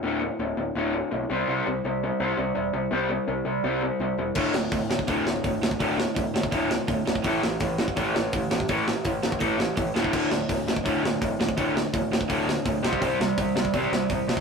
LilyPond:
<<
  \new Staff \with { instrumentName = "Distorted electric guitar" } { \clef bass \time 4/4 \key c \lydian \tempo 4 = 166 r1 | r1 | r1 | <d, a, d>8 <d, a,>8 <d, a,>8 <d, a,>8 <d, a, d>8 <d, a,>8 <d, a,>8 <d, a,>8 |
<d, a, d>8 <d, a,>8 <d, a,>8 <d, a,>8 <d, a, d>8 <d, a,>8 <d, a,>8 <d, a,>8 | <a, e a>8 <a, e>8 <a, e>8 <a, e>8 <a, e a>8 <a, e>8 <a, e>8 <a, e>8 | <a, e a>8 <a, e>8 <a, e>8 <a, e>8 <a, e a>8 <a, e>8 <a, e>8 <d, a, d>8 | <d, a, d>8 <d, a,>8 <d, a,>8 <d, a,>8 <d, a, d>8 <d, a,>8 <d, a,>8 <d, a,>8 |
<d, a, d>8 <d, a,>8 <d, a,>8 <d, a,>8 <d, a, d>8 <d, a,>8 <d, a,>8 <c g c'>8 | <c g c'>8 <c g>8 <c g>8 <c g>8 <c g c'>8 <c g>8 <c g>8 <c g>8 | }
  \new Staff \with { instrumentName = "Overdriven electric guitar" } { \clef bass \time 4/4 \key c \lydian <d, a, d>8 <d, a,>8 <d, a,>8 <d, a,>8 <d, a, d>8 <d, a,>8 <d, a,>8 <c g c'>8 | <c g c'>8 <c g>8 <c g>8 <c g>8 <c g c'>8 <c g>8 <c g>8 <c g>8 | <c g c'>8 <c g>8 <c g>8 <c g>8 <c g c'>8 <c g>8 <c g>8 <c g>8 | <d, a, d>8 <d, a,>8 <d, a,>8 <d, a,>8 <d, a, d>8 <d, a,>8 <d, a,>8 <d, a,>8 |
<d, a, d>8 <d, a,>8 <d, a,>8 <d, a,>8 <d, a, d>8 <d, a,>8 <d, a,>8 <d, a,>8 | <a, e a>8 <a, e>8 <a, e>8 <a, e>8 <a, e a>8 <a, e>8 <a, e>8 <a, e>8 | <a, e a>8 <a, e>8 <a, e>8 <a, e>8 <a, e a>8 <a, e>8 <a, e>8 <d, a, d>8 | <d, a, d>8 <d, a,>8 <d, a,>8 <d, a,>8 <d, a, d>8 <d, a,>8 <d, a,>8 <d, a,>8 |
<d, a, d>8 <d, a,>8 <d, a,>8 <d, a,>8 <d, a, d>8 <d, a,>8 <d, a,>8 <c g c'>8 | <c g c'>8 <c g>8 <c g>8 <c g>8 <c g c'>8 <c g>8 <c g>8 <c g>8 | }
  \new Staff \with { instrumentName = "Picked electric bass" } { \clef bass \time 4/4 \key c \lydian d,,4 d,,8 d,,8 d,,4 b,,8 c,8 | c,8 c,8 c,4 c,8 c,8 e,,8 c,8 | c,4 c,8 c,8 c,4 c,8 e,,8 | d,,8 d,,8 d,,4 d,,8 d,,8 g,,8 d,,8 |
d,,4 d,,8 d,,8 d,,4 d,,8 d,,8 | a,,8 a,,8 a,,4 a,,8 a,,8 d,8 a,,8 | a,,4 a,,8 a,,8 a,,4 a,,8 d,,8 | d,,8 d,,8 d,,4 d,,8 d,,8 g,,8 d,,8 |
d,,4 d,,8 d,,8 d,,4 d,,8 c,8 | c,8 c,8 c,4 c,8 c,8 e,,8 c,8 | }
  \new DrumStaff \with { instrumentName = "Drums" } \drummode { \time 4/4 r4 r4 r4 r4 | r4 r4 r4 r4 | r4 r4 r4 r4 | <cymc bd>8 sn8 <hho bd>8 sn16 bd16 <hho bd>8 sn8 <hho bd>8 sn16 bd16 |
<hho bd>8 sn8 <hho bd>8 sn16 bd16 <hho bd>8 sn8 <hho bd>8 sn16 bd16 | <hho bd>8 sn8 <hho bd>8 sn16 bd16 <hho bd>8 sn8 <hho bd>8 sn16 bd16 | <hho bd>8 sn8 <hho bd>8 sn16 bd16 <hho bd>8 sn8 <hho bd>8 sn16 bd16 | <cymc bd>8 sn8 <hho bd>8 sn16 bd16 <hho bd>8 sn8 <hho bd>8 sn16 bd16 |
<hho bd>8 sn8 <hho bd>8 sn16 bd16 <hho bd>8 sn8 <hho bd>8 sn16 bd16 | <hho bd>8 sn8 <hho bd>8 sn16 bd16 <hho bd>8 sn8 <hho bd>8 sn16 bd16 | }
>>